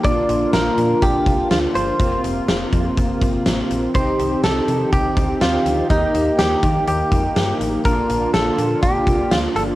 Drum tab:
HH |xxxxxxxx|xxxxxxxx|xxxxxxxx|xxxxxxxx|
SD |--o---o-|--o---o-|--o---o-|--o---o-|
BD |o---oo--|o--ooo--|o---oo--|o--o-o--|

HH |xxxxxxxx|
SD |--o---o-|
BD |o---oo--|